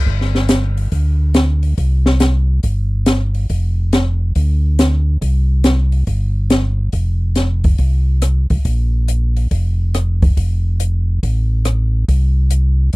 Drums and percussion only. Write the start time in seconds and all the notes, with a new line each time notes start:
0.06 kick
0.21 snare
0.35 snare
0.49 snare, closed hi-hat
0.77 open hi-hat
0.92 kick, open hi-hat
1.34 snare, closed hi-hat
1.63 open hi-hat
1.78 kick, open hi-hat
2.06 snare
2.20 snare, closed hi-hat
2.63 kick, open hi-hat
3.06 snare, closed hi-hat
3.34 open hi-hat
3.49 kick, open hi-hat
3.93 snare, closed hi-hat
4.35 kick, open hi-hat
4.79 snare, closed hi-hat
5.22 kick, open hi-hat
5.64 snare, closed hi-hat
5.92 open hi-hat
6.07 kick, open hi-hat
6.50 snare, closed hi-hat
6.92 kick, open hi-hat
7.35 snare, closed hi-hat
7.64 kick, open hi-hat
7.78 kick, open hi-hat
8.22 cross-stick, closed hi-hat
8.50 kick, open hi-hat
8.65 kick, open hi-hat
9.08 closed hi-hat
9.36 open hi-hat
9.51 kick, open hi-hat
9.94 cross-stick, closed hi-hat
10.22 kick, open hi-hat
10.37 kick, open hi-hat
10.80 closed hi-hat
11.23 kick, open hi-hat
11.65 cross-stick, closed hi-hat
12.08 kick, open hi-hat
12.50 closed hi-hat
12.93 open hi-hat